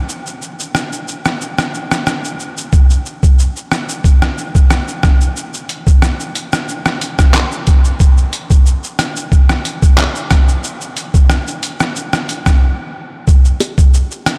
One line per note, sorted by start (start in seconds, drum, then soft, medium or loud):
0.09 shaker medium
0.26 shaker medium
0.42 shaker medium
0.60 shaker medium
0.75 cross-stick medium
0.75 shaker medium
0.92 shaker medium
1.08 shaker medium
1.25 cross-stick medium
1.25 shaker medium
1.41 shaker medium
1.58 cross-stick medium
1.58 shaker soft
1.74 shaker soft
1.91 cross-stick medium
1.91 shaker medium
2.07 cross-stick medium
2.07 shaker medium
2.24 shaker soft
2.40 shaker soft
2.57 shaker medium
2.73 kick loud
2.73 shaker medium
2.90 shaker medium
3.06 shaker medium
3.23 kick loud
3.23 shaker medium
3.39 shaker medium
3.56 shaker medium
3.72 cross-stick medium
3.72 shaker medium
3.89 shaker medium
4.04 kick medium
4.04 shaker medium
4.22 cross-stick medium
4.22 shaker soft
4.38 shaker soft
4.55 kick loud
4.55 shaker medium
4.70 cross-stick medium
4.70 shaker medium
4.88 shaker medium
5.03 kick medium
5.03 cross-stick medium
5.03 shaker soft
5.21 shaker medium
5.36 shaker medium
5.54 shaker medium
5.69 closed hi-hat medium
5.69 shaker medium
5.87 kick loud
5.87 shaker medium
6.02 cross-stick medium
6.02 shaker medium
6.20 shaker medium
6.35 closed hi-hat medium
6.35 shaker medium
6.53 cross-stick medium
6.53 shaker medium
6.68 shaker medium
6.86 cross-stick loud
6.86 shaker soft
7.01 closed hi-hat medium
7.01 shaker soft
7.19 kick loud
7.19 cross-stick medium
7.19 shaker medium
7.34 cross-stick loud
7.34 clap loud
7.34 shaker medium
7.52 shaker medium
7.67 kick medium
7.67 closed hi-hat medium
7.67 shaker soft
7.85 shaker medium
8.00 kick loud
8.00 shaker medium
8.17 shaker medium
8.33 closed hi-hat medium
8.33 shaker medium
8.50 kick medium
8.50 shaker medium
8.66 shaker medium
8.83 shaker soft
8.99 cross-stick medium
8.99 closed hi-hat medium
8.99 shaker medium
9.16 shaker medium
9.32 kick medium
9.32 shaker medium
9.49 cross-stick medium
9.49 shaker soft
9.65 closed hi-hat medium
9.65 shaker medium
9.82 kick loud
9.82 shaker medium
9.98 cross-stick medium
9.98 clap loud
9.98 shaker medium
10.15 shaker medium
10.31 kick medium
10.31 cross-stick medium
10.31 closed hi-hat medium
10.31 shaker soft
10.48 shaker medium
10.64 shaker medium
10.81 shaker medium
10.97 closed hi-hat medium
10.97 shaker medium
11.14 kick medium
11.14 shaker medium
11.30 cross-stick medium
11.30 shaker medium
11.47 shaker soft
11.63 closed hi-hat medium
11.63 shaker medium
11.80 cross-stick loud
11.80 shaker medium
11.96 shaker medium
12.13 cross-stick medium
12.13 shaker soft
12.29 closed hi-hat medium
12.29 shaker medium
12.46 kick loud
12.46 cross-stick medium
12.46 shaker medium
13.28 kick loud
13.28 shaker medium
13.45 shaker medium
13.60 closed hi-hat medium
13.60 high bongo medium
13.60 shaker medium
13.78 kick loud
13.78 shaker medium
13.94 shaker medium
14.11 shaker medium
14.26 cross-stick medium
14.26 closed hi-hat medium
14.26 shaker medium